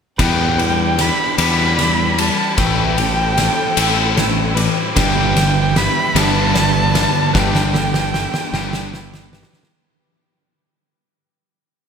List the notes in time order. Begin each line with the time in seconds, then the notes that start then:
0.18 E2 E3 G3 B3 D4 G4 B4 G5, kick, snare, ride
0.58 E3 G3 B4, ride
0.99 E4 B5, snare, ride
1.38 E2 E3 G3 B3 D4 B5, ride
1.77 E3 G3 E4 D5, snare, ride
2.18 E3 G3 A5, ride
2.57 A1 A2 E3 G3 A3 C4 A4 B4 G5, kick, snare, ride
2.97 A2 E3 G3 A4, ride
3.38 E4, snare, ride
3.77 A1 A2 E3 A3 C4, ride
4.17 A2 E3 E4, snare, ride
4.55 A2 E3 G3 B4, ride
4.95 G1 G2 D3 G3 E4 B4 G5, kick, snare, ride
5.35 G2 D3 G3 B4, snare, ride
5.75 E4 B5, snare, ride
6.15 G1 G2 D3 G3 B3 A5, snare, ride
6.54 G2 D3 E4 D5, snare, ride
6.94 G2 D3 G3, snare, ride
7.33 G1 G2 D3 G3 G4 B4 G5, kick, snare
7.55 snare
7.73 G2 D3 G3 A4, snare
7.94 snare
8.13 E4, snare
8.34 snare
8.53 G1 G2 D3 G3 B3, snare
8.73 snare
8.93 G2 D3 E4, snare
9.14 snare
9.33 G2 D3 G3 B4, snare
9.43 snare
9.53 snare
9.63 snare